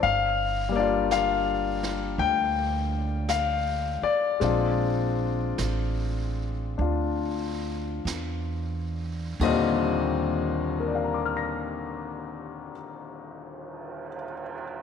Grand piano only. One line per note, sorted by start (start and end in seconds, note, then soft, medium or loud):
0.00 0.14 D5 soft
0.00 0.76 F5 medium
0.69 4.39 G3 medium
0.69 4.40 A#3 soft
0.76 4.41 D4 soft
0.76 4.43 F4 medium
0.76 1.12 D5 medium
1.12 2.15 F5 medium
2.19 3.25 G5 medium
3.30 4.06 F5 medium
4.03 8.02 D5 medium
4.40 9.39 G#3 soft
4.40 9.40 C4 soft
4.40 6.76 D4 soft
4.44 6.80 F4 medium
6.78 9.39 D4 soft
6.78 9.41 F4 soft
9.41 12.72 D#2 medium
9.41 12.73 A#2 medium
9.41 12.72 D3 medium
9.41 12.74 G3 medium
9.41 12.74 C4 medium
9.41 12.75 F4 medium
9.41 12.70 D#5 medium
10.80 14.07 A#4 soft
10.87 14.15 D5 soft
10.95 14.22 F5 soft
11.04 14.32 A#5 soft
11.14 14.42 D6 soft
11.25 14.53 F6 soft
11.37 14.64 A#6 soft